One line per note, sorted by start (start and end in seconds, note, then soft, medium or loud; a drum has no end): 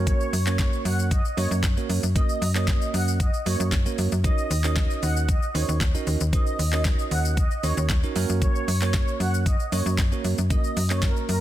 0.00 0.13 F#2 medium
0.00 0.33 A#3 loud
0.00 0.33 C#4 medium
0.00 0.33 F#4 medium
0.00 0.33 A#4 medium
0.00 0.33 C#5 loud
0.07 0.26 C#5 loud
0.07 kick loud
0.07 closed hi-hat medium
0.07 shaker medium
0.20 shaker medium
0.33 0.70 F#2 medium
0.33 open hi-hat medium
0.33 shaker medium
0.47 1.09 A#3 medium
0.47 1.09 C#4 medium
0.47 1.09 F#4 medium
0.47 1.09 A#4 medium
0.47 0.56 C#5 medium
0.47 1.09 C#5 medium
0.47 clap medium
0.47 shaker medium
0.59 0.79 C#5 medium
0.59 kick loud
0.59 snare loud
0.59 clap loud
0.59 closed hi-hat medium
0.59 shaker medium
0.73 shaker medium
0.85 1.22 F#2 medium
0.85 0.96 F#5 medium
0.85 open hi-hat medium
0.85 shaker soft
0.99 shaker medium
1.11 1.31 D#5 medium
1.11 kick loud
1.11 closed hi-hat medium
1.11 shaker medium
1.25 shaker medium
1.37 1.47 F#2 loud
1.37 1.64 A#3 medium
1.37 1.64 C#4 medium
1.37 1.64 F#4 medium
1.37 1.64 A#4 medium
1.37 1.48 C#5 medium
1.37 1.64 C#5 medium
1.37 open hi-hat medium
1.37 shaker medium
1.51 1.78 F#2 loud
1.51 shaker medium
1.64 kick loud
1.64 snare loud
1.64 clap loud
1.64 closed hi-hat medium
1.64 shaker medium
1.77 2.04 A#3 medium
1.77 2.04 C#4 medium
1.77 2.04 F#4 medium
1.77 2.04 A#4 medium
1.77 2.04 C#5 loud
1.77 shaker medium
1.89 1.99 F#2 loud
1.89 open hi-hat medium
1.89 shaker medium
2.03 2.22 F#2 medium
2.03 shaker medium
2.15 2.42 A#3 medium
2.15 2.42 C#4 medium
2.15 2.42 F#4 medium
2.15 2.43 A#4 medium
2.15 2.35 D#5 loud
2.15 2.43 D#5 medium
2.15 kick loud
2.15 closed hi-hat medium
2.15 shaker medium
2.29 shaker medium
2.42 2.78 F#2 loud
2.42 open hi-hat medium
2.42 shaker medium
2.55 3.17 A#3 medium
2.55 3.17 C#4 medium
2.55 3.17 F#4 medium
2.55 3.17 A#4 medium
2.55 3.18 C#5 medium
2.55 2.65 D#5 medium
2.55 clap medium
2.55 shaker medium
2.68 2.87 D#5 medium
2.68 kick loud
2.68 snare loud
2.68 clap loud
2.68 closed hi-hat medium
2.68 shaker medium
2.82 shaker medium
2.94 3.30 F#2 medium
2.94 3.04 F#5 medium
2.94 open hi-hat medium
2.94 shaker soft
3.08 shaker medium
3.20 3.40 D#5 medium
3.20 kick loud
3.20 closed hi-hat medium
3.20 shaker medium
3.34 shaker soft
3.46 3.56 F#2 medium
3.46 3.73 A#3 medium
3.46 3.73 C#4 medium
3.46 3.73 F#4 medium
3.46 3.73 A#4 medium
3.46 3.56 C#5 medium
3.46 3.73 C#5 medium
3.46 open hi-hat medium
3.46 shaker medium
3.60 3.87 F#2 loud
3.60 shaker medium
3.72 kick loud
3.72 snare loud
3.72 clap loud
3.72 closed hi-hat medium
3.72 shaker medium
3.86 4.13 A#3 medium
3.86 4.13 C#4 medium
3.86 4.13 F#4 medium
3.86 4.13 A#4 medium
3.86 4.13 C#5 loud
3.86 shaker medium
3.98 4.08 F#2 loud
3.98 open hi-hat medium
3.98 shaker medium
4.12 4.30 F#2 medium
4.12 shaker medium
4.24 4.51 C#4 medium
4.24 4.51 D#4 medium
4.24 4.51 F#4 medium
4.24 4.51 A#4 medium
4.24 4.51 C#5 medium
4.24 4.44 D#5 loud
4.24 kick loud
4.24 closed hi-hat medium
4.24 shaker medium
4.38 shaker medium
4.50 4.87 D#2 loud
4.50 open hi-hat medium
4.50 shaker medium
4.64 5.26 C#4 medium
4.64 5.26 D#4 medium
4.64 5.26 F#4 medium
4.64 5.26 A#4 medium
4.64 5.26 C#5 medium
4.64 4.73 D#5 medium
4.64 clap medium
4.64 shaker medium
4.76 4.96 D#5 medium
4.76 kick loud
4.76 snare medium
4.76 clap loud
4.76 closed hi-hat medium
4.76 shaker medium
4.90 shaker medium
5.03 5.39 D#2 medium
5.03 5.13 F#5 medium
5.03 open hi-hat medium
5.03 shaker medium
5.17 shaker medium
5.29 5.48 D#5 medium
5.29 kick loud
5.29 closed hi-hat medium
5.29 shaker medium
5.42 shaker soft
5.54 5.64 D#2 loud
5.54 5.81 C#4 medium
5.54 5.82 D#4 medium
5.54 5.82 F#4 medium
5.54 5.82 A#4 medium
5.54 5.82 C5 medium
5.54 5.65 C#5 medium
5.54 open hi-hat medium
5.54 shaker medium
5.69 5.96 D#2 loud
5.69 shaker medium
5.81 kick loud
5.81 snare loud
5.81 clap loud
5.81 closed hi-hat medium
5.81 shaker medium
5.94 6.21 C#4 medium
5.94 6.21 D#4 medium
5.94 6.21 F#4 medium
5.94 6.22 A#4 medium
5.94 6.22 D#5 loud
5.94 shaker medium
6.07 6.17 D#2 loud
6.07 open hi-hat medium
6.07 shaker medium
6.21 6.39 D#2 medium
6.21 shaker medium
6.33 6.60 C#4 medium
6.33 6.60 D#4 medium
6.33 6.60 F#4 medium
6.33 6.60 A#4 medium
6.33 6.60 C5 medium
6.33 6.52 D#5 loud
6.33 kick loud
6.33 closed hi-hat medium
6.33 shaker medium
6.47 shaker medium
6.59 6.96 D#2 medium
6.59 open hi-hat medium
6.59 shaker medium
6.73 7.35 C#4 medium
6.73 7.35 D#4 medium
6.73 7.35 F#4 medium
6.73 7.35 A#4 medium
6.73 7.35 C#5 medium
6.73 6.82 D#5 medium
6.73 clap medium
6.73 shaker medium
6.85 kick loud
6.85 snare loud
6.85 clap loud
6.85 closed hi-hat medium
6.85 shaker medium
6.99 shaker medium
7.11 7.48 D#2 medium
7.11 7.22 F#5 medium
7.11 open hi-hat medium
7.11 shaker soft
7.25 shaker medium
7.37 7.57 D#5 loud
7.37 kick loud
7.37 closed hi-hat medium
7.37 shaker medium
7.51 shaker soft
7.63 7.73 D#2 medium
7.63 7.90 C#4 medium
7.63 7.90 D#4 medium
7.63 7.90 F#4 medium
7.63 7.90 A#4 medium
7.63 7.74 C#5 medium
7.63 7.90 C#5 medium
7.63 open hi-hat medium
7.63 shaker medium
7.77 8.04 D#2 loud
7.77 shaker medium
7.89 kick loud
7.89 snare loud
7.89 clap loud
7.89 closed hi-hat medium
7.89 shaker medium
8.03 8.14 C#4 medium
8.03 8.16 D#4 medium
8.03 8.15 F#4 medium
8.03 8.15 A#4 medium
8.03 8.15 C#5 loud
8.03 shaker medium
8.15 8.25 F#2 loud
8.15 8.68 A#3 loud
8.15 8.68 C#4 medium
8.15 8.68 F#4 medium
8.15 8.68 A#4 medium
8.15 8.68 C#5 loud
8.15 open hi-hat medium
8.15 shaker medium
8.29 8.48 F#2 medium
8.29 shaker medium
8.42 8.61 C#5 loud
8.42 kick loud
8.42 closed hi-hat medium
8.42 shaker medium
8.55 shaker medium
8.68 9.04 F#2 loud
8.68 open hi-hat loud
8.68 shaker medium
8.81 9.44 A#3 medium
8.81 9.44 C#4 medium
8.81 9.44 F#4 medium
8.81 9.44 A#4 medium
8.81 8.91 C#5 medium
8.81 9.44 C#5 medium
8.81 clap medium
8.81 shaker medium
8.94 9.14 C#5 medium
8.94 kick loud
8.94 snare loud
8.94 clap loud
8.94 closed hi-hat medium
8.94 shaker medium
9.08 shaker medium
9.20 9.57 F#2 loud
9.20 9.31 F#5 medium
9.20 open hi-hat medium
9.20 shaker soft
9.34 shaker medium
9.46 9.66 D#5 medium
9.46 kick loud
9.46 closed hi-hat medium
9.46 shaker medium
9.60 shaker medium
9.72 9.82 F#2 loud
9.72 9.99 A#3 medium
9.72 9.99 C#4 medium
9.72 9.99 F#4 medium
9.72 9.99 A#4 medium
9.72 9.83 C#5 medium
9.72 9.99 C#5 medium
9.72 open hi-hat medium
9.72 shaker medium
9.86 10.13 F#2 loud
9.86 shaker medium
9.98 kick loud
9.98 snare loud
9.98 clap loud
9.98 closed hi-hat medium
9.98 shaker medium
10.12 10.39 A#3 medium
10.12 10.39 C#4 medium
10.12 10.39 F#4 medium
10.12 10.39 A#4 medium
10.12 10.39 C#5 loud
10.12 shaker medium
10.24 10.34 F#2 medium
10.24 open hi-hat medium
10.24 shaker medium
10.38 10.57 F#2 medium
10.38 shaker medium
10.50 10.77 A#3 medium
10.50 10.77 C#4 medium
10.50 10.77 F#4 medium
10.50 10.77 A#4 medium
10.50 10.77 D#5 medium
10.50 10.70 D#5 loud
10.50 kick loud
10.50 closed hi-hat medium
10.50 shaker medium
10.64 shaker medium
10.77 11.13 F#2 loud
10.77 open hi-hat medium
10.77 shaker medium
10.90 11.41 A#3 medium
10.90 11.41 C#4 medium
10.90 11.41 F#4 medium
10.90 11.41 A#4 medium
10.90 11.00 C#5 medium
10.90 11.41 C#5 medium
10.90 clap medium
10.90 shaker medium
11.02 11.22 A#4 medium
11.02 kick loud
11.02 snare loud
11.02 clap loud
11.02 closed hi-hat medium
11.02 shaker medium
11.16 shaker medium
11.29 11.41 F#2 loud
11.29 11.39 A#4 medium
11.29 open hi-hat medium
11.29 shaker soft